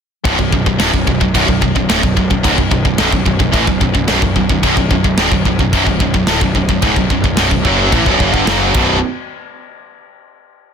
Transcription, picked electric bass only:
0.25 0.38 B0 loud
0.39 0.52 B0 medium
0.52 0.65 B0 medium
0.66 0.79 B0 medium
0.80 0.92 D1 medium
0.93 1.06 B0 medium
1.07 1.20 B0 medium
1.21 1.34 B0 medium
1.35 1.47 B0 medium
1.48 1.61 B0 medium
1.62 1.75 B0 medium
1.76 1.88 B0 medium
1.89 2.02 D1 loud
2.03 2.16 B0 medium
2.17 2.29 B0 medium
2.30 2.43 B0 medium
2.44 2.57 C#1 loud
2.58 2.70 B0 medium
2.71 2.84 B0 medium
2.85 2.98 B0 medium
2.98 3.11 B0 loud
3.12 3.25 B0 medium
3.26 3.39 B0 medium
3.39 3.52 B0 medium
3.53 3.66 A1 medium
3.67 3.80 B0 medium
3.81 3.94 B0 medium
3.95 4.07 B0 medium
4.08 4.21 B0 loud
4.22 4.35 B0 medium
4.36 4.49 B0 medium
4.49 4.62 B0 medium
4.63 4.76 B0 loud
4.77 4.90 B0 medium
4.90 5.03 B0 medium
5.04 5.16 B0 medium
5.17 5.30 D1 loud
5.31 5.44 B0 medium
5.45 5.58 B0 medium
5.59 5.72 B0 medium
5.73 5.86 B0 medium
5.86 5.99 B0 medium
6.00 6.13 B0 medium
6.14 6.25 B0 medium
6.26 6.39 D1 medium
6.41 6.54 B0 medium
6.55 6.68 B0 medium
6.69 6.82 B0 medium
6.82 6.95 C#1 loud
6.96 7.09 B0 medium
7.10 7.23 B0 medium
7.23 7.36 B0 medium
7.37 7.50 B0 loud
7.51 7.64 B0 medium
7.65 7.90 F#1 medium
7.92 8.05 A1 medium
8.06 8.19 B0 loud
8.20 8.32 F#1 medium
8.33 8.45 G1 loud
8.46 8.72 F#1 loud
8.75 9.00 B0 medium

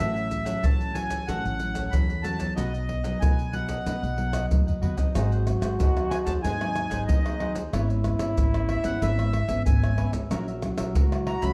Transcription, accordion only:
0.00 0.65 E5 medium
0.63 0.97 A5 medium
0.94 1.28 G#5 medium
1.27 1.94 F#5 medium
1.91 2.25 B5 medium
2.22 2.54 A5 medium
2.56 3.23 D#5 medium
3.20 3.54 G#5 medium
3.53 4.46 F#5 medium
6.10 6.18 G#5 medium
6.25 6.33 A5 medium
6.43 7.04 G#5 loud
7.07 7.53 D#5 medium
8.69 8.85 E5 medium
8.85 9.02 F#5 medium
9.02 9.63 E5 medium
9.66 10.11 G#5 medium
11.27 11.44 A#5 medium
11.42 11.53 B5 loud

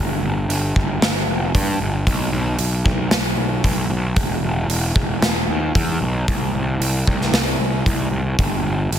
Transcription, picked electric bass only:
0.00 0.20 G1 medium
0.23 0.46 G1 medium
0.48 0.71 G1 medium
0.76 0.99 G1 medium
1.01 1.24 G1 medium
1.28 1.51 F1 medium
1.55 1.77 G2 medium
1.81 2.03 G1 medium
2.07 2.29 B1 medium
2.32 2.55 B1 medium
2.59 2.82 B1 medium
2.85 3.08 B1 medium
3.11 3.34 B1 medium
3.37 3.60 B1 medium
3.64 3.87 B1 medium
3.90 4.13 B1 medium
4.16 4.39 E1 medium
4.43 4.66 E1 medium
4.68 4.91 E1 medium
4.96 5.18 E1 medium
5.21 5.44 E1 medium
5.48 5.71 D#2 medium
5.76 5.98 E2 medium
6.01 6.24 B1 medium
6.28 6.50 C2 medium
6.54 6.77 C2 medium
6.80 7.02 C2 medium
7.07 7.30 C2 medium
7.32 7.55 C2 medium
7.59 7.82 C2 medium
7.86 8.09 C2 medium
8.11 8.34 C2 medium
8.39 8.61 G1 medium
8.63 8.87 G1 medium
8.91 8.99 G1 medium

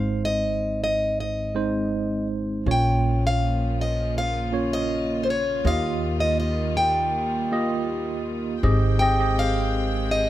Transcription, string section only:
2.66 5.62 C#3 medium
2.66 5.62 F3 medium
2.66 5.62 A#3 medium
2.66 8.59 F4 medium
5.64 8.60 D#3 medium
5.64 8.60 G3 medium
5.64 8.60 A#3 medium
8.63 10.29 D#3 medium
8.63 10.29 G#3 medium
8.63 10.29 C4 medium
8.63 10.29 G5 medium

